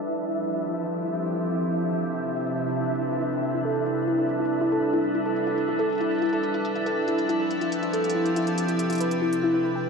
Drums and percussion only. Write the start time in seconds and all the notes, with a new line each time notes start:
0.01 closed hi-hat
0.33 closed hi-hat
0.43 closed hi-hat
0.65 closed hi-hat
0.76 closed hi-hat
0.86 closed hi-hat
1.08 closed hi-hat
1.15 closed hi-hat
1.22 closed hi-hat
1.29 closed hi-hat
1.40 closed hi-hat
1.51 closed hi-hat
1.72 closed hi-hat
1.83 closed hi-hat
1.93 closed hi-hat
2.04 closed hi-hat
2.15 closed hi-hat
2.26 closed hi-hat
2.36 closed hi-hat
2.40 closed hi-hat
2.43 closed hi-hat
2.47 closed hi-hat
2.58 closed hi-hat
2.68 closed hi-hat
2.90 closed hi-hat
2.95 closed hi-hat
3.11 closed hi-hat
3.22 closed hi-hat
3.33 closed hi-hat
3.43 closed hi-hat
3.76 closed hi-hat
3.86 closed hi-hat
4.08 closed hi-hat
4.18 closed hi-hat
4.29 closed hi-hat
4.45 closed hi-hat
4.61 closed hi-hat
4.64 closed hi-hat
4.67 closed hi-hat
4.69 closed hi-hat
4.72 closed hi-hat
4.83 closed hi-hat
4.93 closed hi-hat
5.04 closed hi-hat
5.15 closed hi-hat
5.26 closed hi-hat
5.36 closed hi-hat
5.47 closed hi-hat
5.58 closed hi-hat
5.68 closed hi-hat
5.79 closed hi-hat
5.90 closed hi-hat
5.93 closed hi-hat
5.95 closed hi-hat
5.98 closed hi-hat
6.01 closed hi-hat
6.11 closed hi-hat
6.15 closed hi-hat
6.18 closed hi-hat
6.22 closed hi-hat
6.26 closed hi-hat
6.29 closed hi-hat
6.33 closed hi-hat
6.43 closed hi-hat
6.54 closed hi-hat
6.65 closed hi-hat
6.76 closed hi-hat
6.86 closed hi-hat
7.08 closed hi-hat
7.18 closed hi-hat
7.29 closed hi-hat
7.51 closed hi-hat
7.61 closed hi-hat
7.72 closed hi-hat
7.83 closed hi-hat
7.93 closed hi-hat
8.04 closed hi-hat
8.10 closed hi-hat
8.26 closed hi-hat
8.36 closed hi-hat
8.47 closed hi-hat
8.58 closed hi-hat
8.68 closed hi-hat
8.79 closed hi-hat
8.90 closed hi-hat
8.93 closed hi-hat
8.95 closed hi-hat
8.98 closed hi-hat
9.01 closed hi-hat
9.11 closed hi-hat
9.33 closed hi-hat